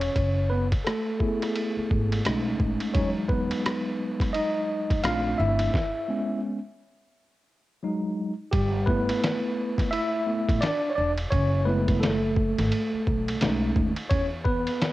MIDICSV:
0, 0, Header, 1, 5, 480
1, 0, Start_track
1, 0, Key_signature, 4, "major"
1, 0, Tempo, 697674
1, 109, Time_signature, 4, 2, 24, 8
1, 10269, End_track
2, 0, Start_track
2, 0, Title_t, "Tine electric piano"
2, 0, Program_c, 0, 4
2, 0, Note_on_c, 0, 61, 68
2, 0, Note_on_c, 0, 73, 81
2, 325, Note_off_c, 0, 61, 0
2, 343, Note_on_c, 0, 71, 82
2, 356, Note_on_c, 0, 59, 63
2, 360, Note_off_c, 0, 73, 0
2, 452, Note_off_c, 0, 71, 0
2, 462, Note_off_c, 0, 59, 0
2, 582, Note_on_c, 0, 69, 73
2, 595, Note_on_c, 0, 57, 51
2, 820, Note_off_c, 0, 57, 0
2, 822, Note_on_c, 0, 68, 51
2, 828, Note_on_c, 0, 57, 46
2, 830, Note_on_c, 0, 59, 43
2, 832, Note_on_c, 0, 64, 56
2, 1518, Note_off_c, 0, 68, 0
2, 1518, Note_off_c, 0, 69, 0
2, 1521, Note_off_c, 0, 57, 0
2, 1522, Note_off_c, 0, 59, 0
2, 1523, Note_off_c, 0, 64, 0
2, 1548, Note_on_c, 0, 56, 54
2, 1550, Note_on_c, 0, 57, 48
2, 1551, Note_on_c, 0, 61, 50
2, 1555, Note_on_c, 0, 63, 64
2, 2005, Note_off_c, 0, 56, 0
2, 2006, Note_off_c, 0, 57, 0
2, 2006, Note_off_c, 0, 61, 0
2, 2008, Note_off_c, 0, 63, 0
2, 2020, Note_on_c, 0, 73, 76
2, 2026, Note_on_c, 0, 54, 53
2, 2031, Note_on_c, 0, 56, 49
2, 2033, Note_on_c, 0, 63, 55
2, 2036, Note_on_c, 0, 61, 63
2, 2130, Note_off_c, 0, 73, 0
2, 2143, Note_off_c, 0, 61, 0
2, 2259, Note_on_c, 0, 71, 80
2, 2275, Note_on_c, 0, 59, 60
2, 2957, Note_off_c, 0, 71, 0
2, 2965, Note_off_c, 0, 59, 0
2, 2979, Note_on_c, 0, 75, 93
2, 2986, Note_off_c, 0, 63, 0
2, 2994, Note_on_c, 0, 63, 74
2, 3440, Note_off_c, 0, 54, 0
2, 3443, Note_off_c, 0, 56, 0
2, 3444, Note_off_c, 0, 63, 0
2, 3464, Note_on_c, 0, 77, 106
2, 3467, Note_on_c, 0, 57, 50
2, 3471, Note_on_c, 0, 60, 52
2, 3476, Note_on_c, 0, 62, 57
2, 3477, Note_on_c, 0, 65, 77
2, 3479, Note_off_c, 0, 75, 0
2, 3697, Note_off_c, 0, 65, 0
2, 3700, Note_on_c, 0, 76, 85
2, 3713, Note_on_c, 0, 64, 68
2, 3714, Note_off_c, 0, 77, 0
2, 3924, Note_off_c, 0, 57, 0
2, 3926, Note_off_c, 0, 60, 0
2, 3929, Note_off_c, 0, 62, 0
2, 4185, Note_on_c, 0, 56, 51
2, 4191, Note_on_c, 0, 59, 49
2, 4194, Note_on_c, 0, 61, 60
2, 4397, Note_off_c, 0, 76, 0
2, 4404, Note_off_c, 0, 64, 0
2, 4524, Note_off_c, 0, 56, 0
2, 4527, Note_off_c, 0, 59, 0
2, 4529, Note_off_c, 0, 61, 0
2, 5386, Note_on_c, 0, 54, 54
2, 5390, Note_on_c, 0, 56, 51
2, 5394, Note_on_c, 0, 63, 60
2, 5725, Note_off_c, 0, 54, 0
2, 5727, Note_off_c, 0, 56, 0
2, 5729, Note_off_c, 0, 63, 0
2, 5858, Note_on_c, 0, 67, 85
2, 5873, Note_on_c, 0, 55, 66
2, 6095, Note_off_c, 0, 55, 0
2, 6096, Note_on_c, 0, 71, 97
2, 6101, Note_on_c, 0, 57, 54
2, 6106, Note_on_c, 0, 59, 72
2, 6109, Note_on_c, 0, 64, 61
2, 6111, Note_off_c, 0, 67, 0
2, 6795, Note_off_c, 0, 71, 0
2, 6802, Note_off_c, 0, 59, 0
2, 6817, Note_on_c, 0, 76, 102
2, 6822, Note_off_c, 0, 64, 0
2, 6831, Note_on_c, 0, 64, 77
2, 7054, Note_off_c, 0, 57, 0
2, 7060, Note_off_c, 0, 64, 0
2, 7063, Note_on_c, 0, 57, 47
2, 7064, Note_on_c, 0, 59, 40
2, 7069, Note_on_c, 0, 64, 53
2, 7282, Note_off_c, 0, 57, 0
2, 7283, Note_off_c, 0, 59, 0
2, 7285, Note_off_c, 0, 64, 0
2, 7298, Note_on_c, 0, 74, 99
2, 7313, Note_on_c, 0, 62, 72
2, 7318, Note_off_c, 0, 76, 0
2, 7497, Note_on_c, 0, 73, 70
2, 7499, Note_off_c, 0, 62, 0
2, 7511, Note_off_c, 0, 74, 0
2, 7536, Note_on_c, 0, 74, 95
2, 7543, Note_off_c, 0, 73, 0
2, 7551, Note_on_c, 0, 62, 65
2, 7647, Note_off_c, 0, 74, 0
2, 7659, Note_off_c, 0, 62, 0
2, 7778, Note_on_c, 0, 73, 95
2, 7792, Note_on_c, 0, 61, 73
2, 8014, Note_off_c, 0, 61, 0
2, 8017, Note_on_c, 0, 71, 83
2, 8021, Note_on_c, 0, 56, 50
2, 8024, Note_on_c, 0, 57, 49
2, 8026, Note_on_c, 0, 59, 66
2, 8030, Note_on_c, 0, 64, 59
2, 8031, Note_off_c, 0, 73, 0
2, 8254, Note_off_c, 0, 59, 0
2, 8257, Note_on_c, 0, 69, 76
2, 8263, Note_off_c, 0, 57, 0
2, 8271, Note_off_c, 0, 71, 0
2, 8271, Note_on_c, 0, 57, 55
2, 8362, Note_off_c, 0, 56, 0
2, 8367, Note_off_c, 0, 64, 0
2, 9196, Note_off_c, 0, 69, 0
2, 9203, Note_off_c, 0, 57, 0
2, 9223, Note_on_c, 0, 56, 57
2, 9226, Note_on_c, 0, 57, 55
2, 9230, Note_on_c, 0, 61, 55
2, 9233, Note_on_c, 0, 63, 61
2, 9563, Note_off_c, 0, 56, 0
2, 9565, Note_off_c, 0, 57, 0
2, 9567, Note_off_c, 0, 61, 0
2, 9569, Note_off_c, 0, 63, 0
2, 9698, Note_on_c, 0, 73, 90
2, 9710, Note_on_c, 0, 61, 69
2, 9808, Note_off_c, 0, 73, 0
2, 9818, Note_off_c, 0, 61, 0
2, 9939, Note_on_c, 0, 71, 87
2, 9953, Note_on_c, 0, 59, 64
2, 10269, Note_off_c, 0, 59, 0
2, 10269, Note_off_c, 0, 71, 0
2, 10269, End_track
3, 0, Start_track
3, 0, Title_t, "Upright bass"
3, 0, Program_c, 1, 32
3, 110, Note_on_c, 1, 30, 98
3, 490, Note_off_c, 1, 30, 0
3, 1314, Note_on_c, 1, 32, 87
3, 1502, Note_off_c, 1, 32, 0
3, 1554, Note_on_c, 1, 35, 82
3, 1742, Note_off_c, 1, 35, 0
3, 1789, Note_on_c, 1, 33, 83
3, 1903, Note_off_c, 1, 33, 0
3, 2029, Note_on_c, 1, 40, 94
3, 2409, Note_off_c, 1, 40, 0
3, 3376, Note_on_c, 1, 42, 76
3, 3451, Note_off_c, 1, 42, 0
3, 3470, Note_on_c, 1, 34, 86
3, 3660, Note_off_c, 1, 34, 0
3, 3712, Note_on_c, 1, 31, 92
3, 3901, Note_off_c, 1, 31, 0
3, 5868, Note_on_c, 1, 31, 98
3, 6249, Note_off_c, 1, 31, 0
3, 7217, Note_on_c, 1, 33, 80
3, 7291, Note_off_c, 1, 33, 0
3, 7553, Note_on_c, 1, 28, 80
3, 7742, Note_off_c, 1, 28, 0
3, 7789, Note_on_c, 1, 30, 104
3, 8625, Note_off_c, 1, 30, 0
3, 8658, Note_on_c, 1, 32, 81
3, 8732, Note_off_c, 1, 32, 0
3, 8994, Note_on_c, 1, 35, 95
3, 9183, Note_off_c, 1, 35, 0
3, 9233, Note_on_c, 1, 35, 96
3, 9422, Note_off_c, 1, 35, 0
3, 9470, Note_on_c, 1, 39, 91
3, 9584, Note_off_c, 1, 39, 0
3, 9707, Note_on_c, 1, 40, 93
3, 10088, Note_off_c, 1, 40, 0
3, 10269, End_track
4, 0, Start_track
4, 0, Title_t, "Muted upright bass strokes"
4, 1218, Note_on_c, 9, 29, 47
4, 1287, Note_off_c, 9, 29, 0
4, 8897, Note_on_c, 9, 29, 44
4, 8966, Note_off_c, 9, 29, 0
4, 10269, End_track
5, 0, Start_track
5, 0, Title_t, "Drums"
5, 9, Note_on_c, 9, 51, 56
5, 77, Note_off_c, 9, 51, 0
5, 108, Note_on_c, 9, 36, 107
5, 109, Note_on_c, 9, 51, 68
5, 177, Note_off_c, 9, 36, 0
5, 178, Note_off_c, 9, 51, 0
5, 496, Note_on_c, 9, 36, 84
5, 496, Note_on_c, 9, 51, 60
5, 565, Note_off_c, 9, 36, 0
5, 565, Note_off_c, 9, 51, 0
5, 596, Note_on_c, 9, 44, 50
5, 596, Note_on_c, 9, 51, 70
5, 599, Note_on_c, 9, 37, 105
5, 665, Note_off_c, 9, 44, 0
5, 665, Note_off_c, 9, 51, 0
5, 668, Note_off_c, 9, 37, 0
5, 827, Note_on_c, 9, 36, 83
5, 896, Note_off_c, 9, 36, 0
5, 979, Note_on_c, 9, 51, 59
5, 984, Note_on_c, 9, 37, 29
5, 1048, Note_off_c, 9, 51, 0
5, 1053, Note_off_c, 9, 37, 0
5, 1070, Note_on_c, 9, 51, 68
5, 1139, Note_off_c, 9, 51, 0
5, 1314, Note_on_c, 9, 36, 78
5, 1382, Note_off_c, 9, 36, 0
5, 1460, Note_on_c, 9, 51, 55
5, 1528, Note_off_c, 9, 51, 0
5, 1548, Note_on_c, 9, 44, 55
5, 1548, Note_on_c, 9, 51, 87
5, 1558, Note_on_c, 9, 37, 116
5, 1617, Note_off_c, 9, 44, 0
5, 1617, Note_off_c, 9, 51, 0
5, 1627, Note_off_c, 9, 37, 0
5, 1787, Note_on_c, 9, 36, 95
5, 1856, Note_off_c, 9, 36, 0
5, 1928, Note_on_c, 9, 51, 54
5, 1997, Note_off_c, 9, 51, 0
5, 2027, Note_on_c, 9, 36, 106
5, 2027, Note_on_c, 9, 51, 69
5, 2095, Note_off_c, 9, 51, 0
5, 2096, Note_off_c, 9, 36, 0
5, 2265, Note_on_c, 9, 36, 88
5, 2334, Note_off_c, 9, 36, 0
5, 2414, Note_on_c, 9, 51, 62
5, 2483, Note_off_c, 9, 51, 0
5, 2516, Note_on_c, 9, 44, 48
5, 2516, Note_on_c, 9, 51, 68
5, 2519, Note_on_c, 9, 37, 107
5, 2585, Note_off_c, 9, 44, 0
5, 2585, Note_off_c, 9, 51, 0
5, 2588, Note_off_c, 9, 37, 0
5, 2890, Note_on_c, 9, 36, 92
5, 2898, Note_on_c, 9, 51, 61
5, 2903, Note_on_c, 9, 37, 32
5, 2958, Note_off_c, 9, 36, 0
5, 2967, Note_off_c, 9, 51, 0
5, 2972, Note_off_c, 9, 37, 0
5, 2989, Note_on_c, 9, 51, 67
5, 3057, Note_off_c, 9, 51, 0
5, 3374, Note_on_c, 9, 36, 82
5, 3376, Note_on_c, 9, 51, 55
5, 3443, Note_off_c, 9, 36, 0
5, 3445, Note_off_c, 9, 51, 0
5, 3465, Note_on_c, 9, 44, 63
5, 3465, Note_on_c, 9, 51, 81
5, 3474, Note_on_c, 9, 37, 119
5, 3533, Note_off_c, 9, 44, 0
5, 3533, Note_off_c, 9, 51, 0
5, 3543, Note_off_c, 9, 37, 0
5, 3846, Note_on_c, 9, 51, 56
5, 3915, Note_off_c, 9, 51, 0
5, 3949, Note_on_c, 9, 36, 92
5, 3957, Note_on_c, 9, 38, 76
5, 4017, Note_off_c, 9, 36, 0
5, 4025, Note_off_c, 9, 38, 0
5, 5866, Note_on_c, 9, 51, 67
5, 5867, Note_on_c, 9, 36, 106
5, 5935, Note_off_c, 9, 51, 0
5, 5936, Note_off_c, 9, 36, 0
5, 6104, Note_on_c, 9, 36, 94
5, 6173, Note_off_c, 9, 36, 0
5, 6254, Note_on_c, 9, 51, 62
5, 6323, Note_off_c, 9, 51, 0
5, 6354, Note_on_c, 9, 44, 52
5, 6354, Note_on_c, 9, 51, 77
5, 6357, Note_on_c, 9, 38, 105
5, 6423, Note_off_c, 9, 44, 0
5, 6423, Note_off_c, 9, 51, 0
5, 6426, Note_off_c, 9, 38, 0
5, 6729, Note_on_c, 9, 36, 89
5, 6737, Note_on_c, 9, 51, 60
5, 6743, Note_on_c, 9, 38, 33
5, 6798, Note_off_c, 9, 36, 0
5, 6806, Note_off_c, 9, 51, 0
5, 6811, Note_off_c, 9, 38, 0
5, 6830, Note_on_c, 9, 51, 71
5, 6898, Note_off_c, 9, 51, 0
5, 7214, Note_on_c, 9, 36, 84
5, 7218, Note_on_c, 9, 51, 55
5, 7283, Note_off_c, 9, 36, 0
5, 7287, Note_off_c, 9, 51, 0
5, 7306, Note_on_c, 9, 44, 64
5, 7306, Note_on_c, 9, 51, 86
5, 7316, Note_on_c, 9, 38, 114
5, 7375, Note_off_c, 9, 44, 0
5, 7375, Note_off_c, 9, 51, 0
5, 7384, Note_off_c, 9, 38, 0
5, 7689, Note_on_c, 9, 51, 53
5, 7757, Note_off_c, 9, 51, 0
5, 7787, Note_on_c, 9, 36, 109
5, 7787, Note_on_c, 9, 51, 70
5, 7856, Note_off_c, 9, 36, 0
5, 7856, Note_off_c, 9, 51, 0
5, 8174, Note_on_c, 9, 51, 68
5, 8175, Note_on_c, 9, 36, 97
5, 8243, Note_off_c, 9, 51, 0
5, 8244, Note_off_c, 9, 36, 0
5, 8276, Note_on_c, 9, 44, 53
5, 8276, Note_on_c, 9, 51, 71
5, 8279, Note_on_c, 9, 38, 112
5, 8345, Note_off_c, 9, 44, 0
5, 8345, Note_off_c, 9, 51, 0
5, 8348, Note_off_c, 9, 38, 0
5, 8506, Note_on_c, 9, 36, 88
5, 8575, Note_off_c, 9, 36, 0
5, 8658, Note_on_c, 9, 51, 61
5, 8663, Note_on_c, 9, 38, 29
5, 8727, Note_off_c, 9, 51, 0
5, 8732, Note_off_c, 9, 38, 0
5, 8750, Note_on_c, 9, 51, 71
5, 8819, Note_off_c, 9, 51, 0
5, 8993, Note_on_c, 9, 36, 86
5, 9061, Note_off_c, 9, 36, 0
5, 9139, Note_on_c, 9, 51, 58
5, 9208, Note_off_c, 9, 51, 0
5, 9226, Note_on_c, 9, 44, 62
5, 9226, Note_on_c, 9, 51, 86
5, 9236, Note_on_c, 9, 38, 116
5, 9295, Note_off_c, 9, 44, 0
5, 9295, Note_off_c, 9, 51, 0
5, 9305, Note_off_c, 9, 38, 0
5, 9467, Note_on_c, 9, 36, 102
5, 9535, Note_off_c, 9, 36, 0
5, 9607, Note_on_c, 9, 51, 56
5, 9676, Note_off_c, 9, 51, 0
5, 9705, Note_on_c, 9, 51, 74
5, 9707, Note_on_c, 9, 36, 104
5, 9774, Note_off_c, 9, 51, 0
5, 9775, Note_off_c, 9, 36, 0
5, 9944, Note_on_c, 9, 36, 96
5, 10012, Note_off_c, 9, 36, 0
5, 10092, Note_on_c, 9, 51, 66
5, 10161, Note_off_c, 9, 51, 0
5, 10194, Note_on_c, 9, 44, 50
5, 10194, Note_on_c, 9, 51, 69
5, 10197, Note_on_c, 9, 38, 116
5, 10262, Note_off_c, 9, 44, 0
5, 10262, Note_off_c, 9, 51, 0
5, 10265, Note_off_c, 9, 38, 0
5, 10269, End_track
0, 0, End_of_file